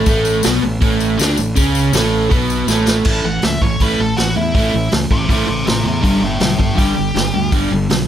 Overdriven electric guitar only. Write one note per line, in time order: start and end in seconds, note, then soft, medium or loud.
0.07 0.44 A2 medium
0.07 0.44 A3 loud
0.44 0.62 B2 medium
0.44 0.63 B3 loud
0.63 0.78 A2 medium
0.81 1.18 A2 loud
0.81 1.19 A3 medium
1.19 1.37 D3 medium
1.19 1.37 D4 medium
1.38 1.52 A2 medium
1.55 1.93 C#3 loud
1.55 1.93 C#4 loud
1.93 2.30 A2 medium
1.93 2.31 A3 loud
2.30 2.67 B2 medium
2.30 2.68 B3 loud
2.68 3.05 A2 medium
2.68 3.05 A3 loud
3.06 3.23 A2 medium
3.06 3.23 E3 medium
3.06 3.24 A3 medium
3.25 3.41 A2 medium
3.25 3.42 E3 medium
3.44 3.60 A2 medium
3.44 3.60 E3 medium
3.63 3.79 A2 medium
3.63 3.79 E3 medium
3.81 3.98 A2 medium
3.81 3.98 E3 medium
3.81 3.99 A3 medium
4.00 4.16 A2 medium
4.00 4.17 E3 medium
4.19 4.35 A2 medium
4.19 4.35 E3 medium
4.36 4.53 A2 medium
4.36 4.53 E3 medium
4.55 4.72 A2 medium
4.55 4.73 E3 medium
4.55 4.73 A3 loud
4.74 4.90 A2 medium
4.74 4.91 E3 medium
4.92 5.09 A2 medium
4.92 5.09 E3 medium
5.11 5.28 A2 medium
5.11 5.28 E3 medium
5.29 5.46 A2 medium
5.29 5.46 E3 medium
5.29 5.48 A3 medium
5.47 5.64 A2 medium
5.47 5.64 E3 medium
5.66 5.83 A2 medium
5.66 5.83 E3 medium
5.84 6.02 A2 medium
5.84 6.02 E3 medium
6.03 6.20 G2 medium
6.03 6.20 D3 loud
6.03 6.21 G3 loud
6.21 6.38 G2 medium
6.21 6.39 D3 medium
6.40 6.56 G2 medium
6.40 6.57 D3 medium
6.57 6.74 G2 medium
6.57 6.74 D3 medium
6.75 6.94 G2 medium
6.75 6.94 D3 loud
6.75 6.95 G3 loud
6.95 7.13 G2 medium
6.95 7.12 D3 medium
7.14 7.32 G2 medium
7.14 7.32 D3 medium
7.33 7.50 G2 medium
7.33 7.51 D3 medium
7.52 7.70 G2 medium
7.52 7.70 D3 medium
7.52 7.71 G3 medium
7.73 7.89 G2 medium
7.73 7.89 D3 medium
7.90 8.07 G2 medium
7.90 8.07 D3 medium